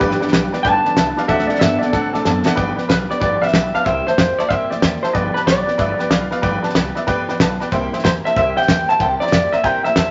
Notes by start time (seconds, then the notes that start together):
Already playing: G4
0.00 G1 G2 D3 F3 B3 D4 G4 B4 D5 G5, kick, snare
0.11 snare
0.20 G2 D3 F3 B3 D4 G4 B4 D5 G5, muted upright bass stroke, snare
0.28 snare
0.32 B1 G2 E3 F3 B3 D4 B4 D5 G5, snare, hi-hat pedal
0.52 G2 E3 F3 B3 D4 G4 B4 D5 G5, snare
0.63 G1 G2 D3 F3 B3 D4 G4 B4 D5 G5 A5, kick, snare
0.85 G2 D3 F3 B3 D4 G4 B4 D5 A5, muted upright bass stroke, snare
0.96 C2 G2 E3 B3 D4 G4 B4 D5 E5, snare, hi-hat pedal
1.16 G2 E3 F3 B3 D4 G4 B4 D5 F5, muted upright bass stroke, snare
1.28 D2 D3 F#3 A3 C4 D4 A4 D5 E5 F#5, kick, snare
1.39 snare
1.47 D3 A3 D4 A4 D5 F#5, muted upright bass stroke, snare
1.51 C4
1.55 E5, snare
1.60 G2 D3 F#3 B3 C4 D4 A4 D5 F#5, snare, hi-hat pedal
1.78 D3 B3 D4 A4 D5, muted upright bass stroke, snare
1.83 C4 F#5
1.93 A2 D3 F#3 A3 C4 D4 A4 D5 F#5, kick, snare
2.13 B2 D3 A3 C4 D4 A4 D5 A5, snare
2.25 F#2 D3 F#3 B3 C4 D4 A4 D5 A5, snare, hi-hat pedal
2.45 D3 B3 C4 D4 A4 D5 E5 F#5, muted upright bass stroke, snare
2.56 G1 G2 D3 F3 B3 D4 G4 B4 D5 G5, kick, snare
2.76 F3 B3 D4 G4 B4 D5 G5, muted upright bass stroke, snare
2.88 B1 F3 B3 D4 G4 B4 D5 F5, kick, snare, hi-hat pedal
3.09 F3 B3 D4 G4 B4 D5 G5, snare
3.20 G1 G2 D3 F3 B3 D4 G4 B4 D5 G5, kick, snare
3.41 F3 B3 D4 G4 B4 D5 E5 G5, muted upright bass stroke, snare
3.48 snare
3.53 B1 F3 B3 D4 B4 D5 G5, kick, snare, hi-hat pedal
3.74 F3 B3 D4 G4 B4 D5 F5 A5, muted upright bass stroke, snare
3.84 C2 C3 G3 A#3 E4 G4 C5 E5 G5, kick, snare
4.05 A#3 E4 G4 C5 E5 A5, snare
4.17 F2 G3 A#3 E4 G4 C5 E5 G5, kick, snare, hi-hat pedal
4.38 A#3 E4 G4 C5 D5 E5 A5, muted upright bass stroke, snare
4.49 G2 C3 G3 A#3 E4 G4 C5 E5 G5, kick, snare
4.70 A2 A#3 E4 G4 C5 D5 E5 G5, snare
4.82 E2 G3 A#3 E4 G4 C5 E5 G5, kick, snare, hi-hat pedal
5.02 A#3 E4 G4 C5 E5 A5, muted upright bass stroke, snare
5.13 G1 G2 D3 F3 B3 F4 G4 B4 D5 G5, kick, snare
5.34 F3 B3 F4 G4 B4 D5 A5, muted upright bass stroke, snare
5.45 B1 B3 F4 B4 D5 G5, kick, snare, hi-hat pedal
5.66 F3 B3 F4 G4 B4 D5 G5, muted upright bass stroke, snare
5.78 G1 G2 D3 F3 B3 F4 G4 B4 D5 E5, kick, snare
5.99 F3 B3 F4 G4 B4 D5 G5, muted upright bass stroke, snare
6.10 B1 F3 B3 F4 B4 D5 F5, kick, snare, hi-hat pedal
6.30 F3 B3 F4 G4 B4 D5 F5, muted upright bass stroke, snare
6.42 G1 G2 D3 F3 B3 F4 G4 B4 D5 G5, kick, snare
6.63 F3 B3 F4 G4 B4 D5 A5, muted upright bass stroke, snare
6.70 snare
6.75 C2 F3 B3 F4 G4 B4 D5 G5, kick, snare, hi-hat pedal
6.95 F3 B3 F4 G4 B4 D5 E5, snare
7.07 D2 G2 D3 F3 B3 F4 G4 B4 D5 G5, kick, snare
7.27 E2 F3 B3 F4 G4 B4 D5 G5, snare
7.40 B1 F3 B3 F4 G4 B4 D5 A5, kick, snare, hi-hat pedal
7.60 F3 B3 F4 G4 B4 D5 G5, snare
7.71 C2 C3 G3 A#3 E4 G4 C5 E5 G5, kick, snare
7.92 A#3 E4 G4 C5 E5 G5, muted upright bass stroke, snare
7.99 snare
8.04 E2 G3 A#3 G4 C5 E5 A#5, kick, snare, hi-hat pedal
8.25 A#3 E4 G4 C5 E5 A5, muted upright bass stroke, snare
8.36 C2 C3 G3 A#3 E4 G4 C5 E5 G5, kick, snare
8.57 A#3 E4 G4 C5 E5 G5, muted upright bass stroke, snare
8.62 snare
8.68 E2 A#3 C5 E5 G5, kick, snare, hi-hat pedal
8.88 A#3 E4 G4 C5 E5 G5 A5, muted upright bass stroke, snare
9.00 C2 C3 G3 A#3 E4 G4 C5 E5 G5 A5, kick, snare
9.20 A#3 E4 G4 C5 D5 E5 A#5, snare
9.27 snare
9.32 F2 G3 A#3 E4 G4 C5 E5 G5, kick, snare, hi-hat pedal
9.52 A#3 E4 G4 C5 E5 A#5, muted upright bass stroke, snare
9.64 G2 C3 G3 A#3 E4 G4 C5 E5 G5 A#5, kick, snare
9.84 A2 A#3 E4 G4 C5 E5 A#5, snare
9.96 E2 G3 A#3 E4 G4 C5 E5 A5, kick, snare, hi-hat pedal